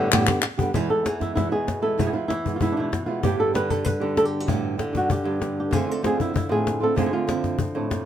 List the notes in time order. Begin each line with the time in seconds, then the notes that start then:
Already playing: A2 D3 G3 B3 G4
0.11 G2 A2 D3 G3 B3 G4, cajon bass, clap
0.26 D3 G3 B3 G4, cajon bass, clap
0.42 muted nylon-string guitar stroke, clap
0.58 D3 G3 B3 G4, cajon bass
0.74 E2 B2 E3 G#3 B3 E4 G#4, cajon bass
0.89 E3 G#3 B3 E4 A4
1.05 E3 G#4, muted nylon-string guitar stroke, cajon slap
1.20 E3 G#3 B3 E4, cajon bass, cajon slap
1.35 E2 B2 E3 G#3 B3 E4, cajon bass, cajon slap
1.51 B2 E3 G#3 B3 E4 G#4
1.67 muted nylon-string guitar stroke, cajon bass, cajon slap
1.82 E3 G#3 B3 E4 A4
1.98 E2 B2 E3 G#3 B3 E4 G#4, cajon bass
2.07 G#4
2.13 E3 G#3 B3 E4 F4
2.28 E3 E4, muted nylon-string guitar stroke, cajon slap
2.45 E3 G#3 B3 E4, cajon bass
2.56 E2 F4
2.60 B2 E3 G#3 B3 E4, cajon bass
2.72 D4
2.76 B2 E3 G#3 B3 E4
2.92 B3, muted nylon-string guitar stroke, cajon bass, cajon slap
3.06 E3 G#3 B3 E4 F4
3.23 G2 A2 D3 G3 B3 G4, cajon bass
3.40 A4
3.54 D3 G3 B3 G4 B4, cajon slap
3.69 D3 G3 B3 G4 A4, cajon bass
3.85 B4, muted nylon-string guitar stroke, cajon bass
4.00 D3 G3 B3 D4 G4
4.16 D3 G3 B3 G4 A4, cajon slap
4.25 G4
4.40 F#4
4.46 G2 A2 D3 G3 B3 E4, cajon bass
4.78 D3 G3 B3 D4 G4, cajon slap
4.93 D3 G3 B3 G4, cajon bass
4.97 F#4
5.09 G4, muted nylon-string guitar stroke, cajon bass
5.24 G2 D3 G3 B3 G4
5.40 D3 G3 B3 D4 G4, cajon slap
5.60 G4
5.71 D3 A3 C4 F4 G#4, cajon bass
5.87 A3 C4 F4
5.91 A4
6.02 D3 F3 A3 C4 F4, cajon slap
6.06 G#4
6.20 E4, cajon bass
6.34 E4, muted nylon-string guitar stroke, cajon bass
6.49 A2 A3 C4 F4 G#4
6.67 cajon slap
6.80 A3 C4 F4 A4
6.95 D3 A3 C4 F4 G#4, cajon bass
7.06 G#4
7.11 A3 C4 F4
7.27 D3 F3 A3 C4 E4, cajon slap
7.44 cajon bass, cajon slap
7.58 C4, muted nylon-string guitar stroke, cajon bass
7.75 A2 A3 C4 D4
7.90 C3, cajon bass, cajon slap